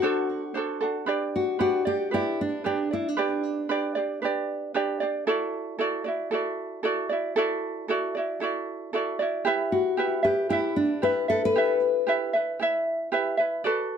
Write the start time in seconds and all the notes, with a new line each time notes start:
Already playing: F#4
0.02 D4 F#4 A4 C5
0.54 D4 F#4 A4 C5
0.81 D4 F#4 A4
1.06 D4 G4 B4 D5
1.36 F#4
1.59 D4 F#4 G4 B4 D5
1.85 D4 G4 D5
2.11 D4 E4 G4 B4 D5
2.41 D4
2.64 D4 G4 B4 D5
2.91 D4 E4 D5
3.08 D4
3.17 D4 G4 B4 D5
3.69 D4 G4 B4 D5
3.95 D4 G4 D5
4.22 D4 G4 B4 D5
4.74 D4 G4 B4 D5
5.00 D4 G4 D5
5.27 E4 F#4 A4 D5
5.79 E4 F#4 A4 D5
6.04 E4 F#4 D5
6.31 E4 F#4 A4 D5
6.83 E4 F#4 A4 D5
7.09 E4 F#4 D5
7.36 E4 F#4 A4 D5
7.88 E4 F#4 A4 D5
8.15 E4 F#4 D5
8.40 E4 F#4 A4 D5
8.93 E4 F#4 A4 D5
9.19 E4 F#4 D5
9.45 E4 G4 B4 E5
9.72 F#4
9.97 E4 G4 B4 E5
10.23 E4 G4 B4 E5
10.49 E4 G4 B4 E5
10.76 D4
11.02 E4 G4 B4 E5
11.28 E4 A4 B4 E5
11.45 B4
11.56 E4 G4 B4 E5
12.07 E4 G4 B4 E5
12.33 E4 B4 E5
12.60 E4 G4 B4 E5
13.12 E4 G4 B4 E5
13.37 E4 B4 E5
13.64 F#4 A4 B4 D5